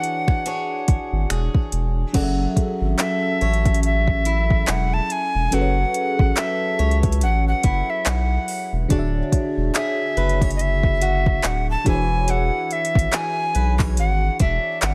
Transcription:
Already playing: fm electric piano E3 D4 F#4 G#4 C#5, steel-string acoustic guitar E3 D4 G#4 C#5, recorder F#5
0.04 closed hi-hat
0.28 finger snap, kick
0.46 steel-string acoustic guitar D4 G#4 C#5, closed hi-hat
0.88 sub bass G#1, kick, closed hi-hat
1.12 sub bass G#1
1.30 sub bass E1, steel-string acoustic guitar G#4, finger snap, closed hi-hat
1.55 kick
1.72 sub bass E1, closed hi-hat
2.13 sub bass F#1, fm electric piano F#3 C#4 G#4 A4 D5, steel-string acoustic guitar F#3, kick, closed hi-hat, crash
2.23 fm electric piano E5
2.56 kick, closed hi-hat
2.81 sub bass G#1
2.99 steel-string acoustic guitar A4, recorder E5, clap, closed hi-hat
3.41 sub bass A1, steel-string acoustic guitar C#5, closed hi-hat
3.53 closed hi-hat
3.65 kick, closed hi-hat
3.74 closed hi-hat
3.83 recorder E5, closed hi-hat
4.08 kick
4.25 steel-string acoustic guitar E4, closed hi-hat
4.50 kick
4.67 sub bass E1, recorder F#5, clap, closed hi-hat
4.94 recorder A5
5.10 recorder G#5, closed hi-hat
5.35 sub bass E1
5.51 sub bass F#1, fm electric piano F#3 C#4 G#4 A4 B4, steel-string acoustic guitar F#3, recorder F#5, closed hi-hat
5.61 fm electric piano C#5
5.94 closed hi-hat
6.19 sub bass A1, kick
6.37 steel-string acoustic guitar A4, recorder E5, clap, closed hi-hat
6.79 sub bass C#2, steel-string acoustic guitar C#5, closed hi-hat
6.91 closed hi-hat
7.03 kick, closed hi-hat
7.12 closed hi-hat
7.21 sub bass A1, recorder F#5, closed hi-hat
7.48 recorder F#5
7.63 sub bass F#1, steel-string acoustic guitar E4, kick, closed hi-hat
7.90 recorder E5
8.06 sub bass B1, recorder F#5, clap, closed hi-hat
8.48 open hi-hat
8.73 sub bass E1
8.88 sub bass D1, fm electric piano D3 D4 F#4 G#4 C#5 D5, steel-string acoustic guitar D4, kick, closed hi-hat
8.99 fm electric piano E5
9.32 kick, closed hi-hat
9.57 sub bass E1
9.75 steel-string acoustic guitar G#4, recorder E5, clap, closed hi-hat
10.17 sub bass F#1, steel-string acoustic guitar B4, closed hi-hat
10.29 closed hi-hat
10.41 steel-string acoustic guitar C#5, kick, closed hi-hat
10.51 closed hi-hat
10.56 recorder D#5, closed hi-hat
10.61 recorder E5
10.83 kick
11.01 steel-string acoustic guitar F#4, closed hi-hat
11.26 kick
11.43 sub bass D1, recorder F#5, clap, closed hi-hat
11.71 recorder A5
11.84 sub bass E1, fm electric piano E3 D4 F#4 G#4 C5, steel-string acoustic guitar E3, kick, closed hi-hat
11.89 recorder G#5
11.95 fm electric piano C#5
12.28 steel-string acoustic guitar E3, recorder F#5, closed hi-hat
12.71 recorder E5, closed hi-hat
12.85 closed hi-hat
12.95 sub bass G#1, kick, closed hi-hat
13.13 steel-string acoustic guitar G#4, recorder G#5, clap, closed hi-hat
13.55 sub bass B1, steel-string acoustic guitar B4, closed hi-hat
13.79 steel-string acoustic guitar C#5, kick, clap
13.97 sub bass G#1, recorder F#5, closed hi-hat
14.39 sub bass E1, steel-string acoustic guitar D4, recorder E5, kick, closed hi-hat
14.82 sub bass G#1, recorder F#5, clap, closed hi-hat

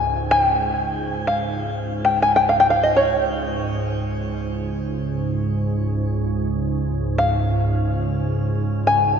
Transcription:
Already playing: synth drone C#2 G#2, five-string banjo G#5
0.31 five-string banjo G#5
0.42 five-string banjo G5
1.27 five-string banjo F5
2.05 five-string banjo G5
2.22 five-string banjo G#5
2.36 five-string banjo G5
2.49 five-string banjo F5
2.60 five-string banjo G5
2.70 five-string banjo F5
2.83 five-string banjo D#5
2.96 five-string banjo C#5
7.18 five-string banjo F5
8.87 five-string banjo G#5

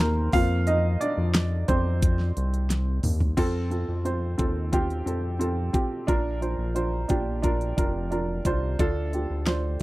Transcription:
Already playing: analog synth bass D#2, upright piano G3 C4 D#4 F4 C5 D#5
0.00 upright piano A#3 A#4
0.32 analog synth bass F2, upright piano A#3 C4 F4 F5, kick, open hi-hat
0.67 upright piano D#4 D#5, closed hi-hat
1.01 upright piano D4 D5, closed hi-hat
1.18 analog synth bass F2
1.34 snare, closed hi-hat
1.68 analog synth bass F2, upright piano C4 C5, kick, closed hi-hat
2.02 kick, closed hi-hat
2.19 snare
2.37 analog synth bass C2, closed hi-hat
2.54 closed hi-hat
2.70 snare, closed hi-hat
3.03 analog synth bass D#2, mid tom, open hi-hat
3.20 floor tom
3.37 analog synth bass F2, upright piano C4 F4 A4, kick, closed hi-hat, crash
3.70 upright piano C4 F4 A4, closed hi-hat
3.89 analog synth bass F2
4.05 upright piano C4 F4 C5, closed hi-hat
4.38 analog synth bass D#2, upright piano C4 F4 A4, kick, closed hi-hat
4.72 upright piano C4 F4 G4, kick, closed hi-hat
4.90 closed hi-hat
5.06 analog synth bass F2, upright piano C4 F4 A4, closed hi-hat
5.39 upright piano C4 F4 A4, closed hi-hat
5.73 upright piano C4 F4 G4, kick, closed hi-hat
6.07 analog synth bass A#1, upright piano A#2 D4 F4 A#4, kick, closed hi-hat
6.41 upright piano D4 F4 C5, closed hi-hat
6.58 analog synth bass A#1
6.74 upright piano D4 F4 C5, closed hi-hat
7.08 analog synth bass A#1, upright piano D4 F4 G4, kick, closed hi-hat
7.42 upright piano D4 F4 A#4, kick, closed hi-hat
7.61 closed hi-hat
7.77 analog synth bass F1, upright piano D4 F4 A#4, kick, closed hi-hat
8.11 upright piano D4 F4 A#4, closed hi-hat
8.45 analog synth bass C2, upright piano D4 F4 C5, kick, closed hi-hat
8.79 analog synth bass D2, upright piano D3 D4 F4 A4, kick, closed hi-hat
9.13 upright piano D4 F4 G4, closed hi-hat
9.30 analog synth bass D2
9.46 upright piano D4 F4 C5, snare, closed hi-hat

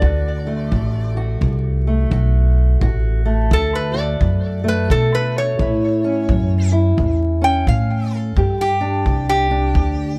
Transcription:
Already playing: steel-string acoustic guitar D4, resonator guitar played with a steel bar D5
0.01 steel-string acoustic guitar D2 F#4, upright bass D2, kick
0.47 steel-string acoustic guitar A3
0.72 upright bass A1, steel-string acoustic guitar D2, kick
1.17 steel-string acoustic guitar F#4
1.41 upright bass C2, steel-string acoustic guitar D2, kick
1.87 steel-string acoustic guitar A3
2.11 upright bass B1, steel-string acoustic guitar D2 F#4, kick
2.81 upright bass A1, steel-string acoustic guitar D2 F#4, kick
3.25 steel-string acoustic guitar A3
3.51 steel-string acoustic guitar D2, upright bass D2, resonator guitar played with a steel bar A4, kick
3.75 resonator guitar played with a steel bar B4
3.94 steel-string acoustic guitar F#4
3.99 resonator guitar played with a steel bar D5
4.21 steel-string acoustic guitar D2, upright bass F#2, kick
4.64 steel-string acoustic guitar A3
4.68 resonator guitar played with a steel bar B4
4.89 steel-string acoustic guitar D2 F#4, upright bass B2, resonator guitar played with a steel bar A4, kick
5.15 resonator guitar played with a steel bar B4
5.38 resonator guitar played with a steel bar C#5
5.59 upright bass A2, steel-string acoustic guitar A2 E4, kick
6.04 steel-string acoustic guitar C#4
6.29 upright bass F#2, steel-string acoustic guitar A2, kick
6.72 steel-string acoustic guitar E4
6.97 upright bass E2, steel-string acoustic guitar A2, kick
7.42 steel-string acoustic guitar C#4, resonator guitar played with a steel bar G5
7.67 steel-string acoustic guitar A2, upright bass A2, resonator guitar played with a steel bar F5, kick
8.13 resonator guitar played with a steel bar A4
8.37 upright bass G2, steel-string acoustic guitar G2 G4, kick
8.61 resonator guitar played with a steel bar G4
8.81 steel-string acoustic guitar D4
9.06 upright bass C2, steel-string acoustic guitar G2, kick
9.29 resonator guitar played with a steel bar G4
9.51 steel-string acoustic guitar D4
9.75 upright bass D2, steel-string acoustic guitar G2, kick

